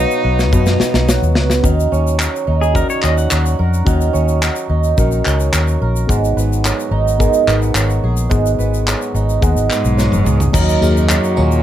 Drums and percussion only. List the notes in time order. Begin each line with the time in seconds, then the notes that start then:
0.11 shaker
0.39 snare, shaker
0.53 kick, shaker
0.66 snare, shaker
0.80 snare, shaker
0.94 snare, shaker
1.09 snare, shaker
1.23 shaker
1.35 snare
1.50 snare, shaker
1.64 kick, shaker
1.80 shaker
1.93 shaker
2.07 shaker
2.19 clap, shaker
2.36 shaker
2.63 shaker
2.75 kick, shaker
2.90 shaker
3.02 clap, shaker
3.18 shaker
3.31 clap, shaker
3.46 shaker
3.74 shaker
3.87 kick, shaker
4.01 shaker
4.15 shaker
4.28 shaker
4.42 clap, shaker
4.56 shaker
4.84 shaker
4.98 kick, shaker
5.11 shaker
5.25 clap, shaker
5.40 shaker
5.53 clap, shaker
5.68 shaker
5.96 shaker
6.09 kick, shaker
6.24 shaker
6.38 shaker
6.53 shaker
6.65 clap, shaker
6.80 shaker
7.08 shaker
7.20 kick, shaker
7.33 shaker
7.48 clap, shaker
7.62 shaker
7.75 clap, shaker
7.90 shaker
8.17 shaker
8.31 kick, shaker
8.46 shaker
8.60 shaker
8.74 shaker
8.88 clap, shaker
9.02 shaker
9.16 shaker
9.29 shaker
9.42 kick, shaker
9.57 shaker
9.70 clap, shaker
9.85 shaker
9.99 snare, shaker
10.12 high tom, shaker
10.26 mid tom, shaker
10.40 floor tom, shaker
10.54 kick, crash, shaker
10.69 shaker
10.82 tambourine, shaker
10.97 shaker
11.09 clap, shaker
11.24 shaker
11.37 tambourine
11.52 shaker